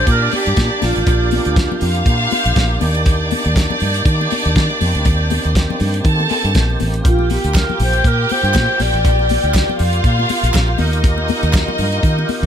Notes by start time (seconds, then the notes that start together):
Already playing: A#3 D4 G4 D5
0.07 A#2 A#4, kick, closed hi-hat
0.31 G4, open hi-hat, high conga
0.46 G2, closed hi-hat
0.57 A#2, kick, snare, closed hi-hat, high conga
0.82 A#1 F4, snare, open hi-hat, high conga
0.96 A1, closed hi-hat
1.07 A#1, kick, closed hi-hat, muted conga
1.31 open hi-hat, high conga
1.45 D2, closed hi-hat
1.56 kick, snare, closed hi-hat
1.72 muted conga, high conga, low conga
1.81 F2 F4 F5, open hi-hat, low conga
1.94 closed hi-hat
2.05 A#2, kick, closed hi-hat, muted conga
2.31 open hi-hat, high conga
2.46 A#1, closed hi-hat
2.56 A#1, kick, snare, closed hi-hat, muted conga, high conga
2.81 D#2 D#3 D4 D5, open hi-hat, high conga
2.95 closed hi-hat
3.06 kick, closed hi-hat, muted conga
3.31 open hi-hat, high conga
3.45 D#2, closed hi-hat
3.56 kick, snare, closed hi-hat, muted conga
3.70 muted conga, high conga, low conga
3.80 G2, open hi-hat, low conga
3.94 closed hi-hat
4.05 D#3, kick, closed hi-hat, muted conga
4.21 muted conga
4.30 open hi-hat, high conga
4.45 D#2, closed hi-hat
4.55 D#3, kick, snare, closed hi-hat, high conga
4.71 muted conga
4.81 F2 C4, open hi-hat, high conga
4.95 D2, closed hi-hat
5.05 D#2, kick, closed hi-hat, muted conga
5.30 open hi-hat, high conga
5.44 D#2, closed hi-hat
5.55 kick, snare, closed hi-hat
5.70 muted conga, high conga, low conga
5.80 G2, open hi-hat, low conga
5.94 closed hi-hat
6.04 D#3 A4 A5, kick, closed hi-hat, muted conga
6.20 muted conga
6.29 open hi-hat, high conga
6.44 G2, closed hi-hat
6.55 A#1, kick, snare, closed hi-hat, high conga
6.70 muted conga
6.80 A1, open hi-hat, high conga
6.94 closed hi-hat
7.04 A#1 F4 G4 G5, kick, closed hi-hat, muted conga
7.19 muted conga
7.30 G4, open hi-hat, high conga
7.44 D2, closed hi-hat
7.54 A#4, kick, snare, clap, closed hi-hat
7.70 high conga, low conga
7.80 A#1 C5, open hi-hat, low conga
7.93 closed hi-hat
8.04 A#2 A#4, kick, closed hi-hat
8.29 C5, open hi-hat, high conga
8.43 G2, closed hi-hat
8.54 A#2, kick, snare, clap, closed hi-hat, high conga
8.80 A#1 D5, snare, open hi-hat, high conga
8.94 A1, closed hi-hat
9.05 A#1, kick, closed hi-hat, muted conga
9.19 muted conga
9.29 open hi-hat, high conga
9.44 D2, closed hi-hat
9.54 kick, snare, clap, closed hi-hat
9.69 high conga, low conga
9.79 F2 F4 F5, open hi-hat, low conga
9.93 closed hi-hat
10.04 A#2, kick, closed hi-hat, muted conga
10.19 muted conga
10.29 open hi-hat, high conga
10.43 A#1, closed hi-hat
10.54 A#1, kick, snare, clap, closed hi-hat, muted conga, high conga
10.68 muted conga
10.78 D#2 D#3 D#4 D#5, open hi-hat, high conga
10.93 closed hi-hat
11.04 kick, closed hi-hat, muted conga
11.18 muted conga
11.28 open hi-hat, high conga
11.43 D#2, closed hi-hat
11.53 kick, snare, clap, closed hi-hat, muted conga
11.68 muted conga, high conga, low conga
11.78 G2, open hi-hat, low conga
11.92 closed hi-hat
12.03 D#3, kick, closed hi-hat, muted conga
12.18 muted conga
12.29 open hi-hat, high conga
12.43 D#2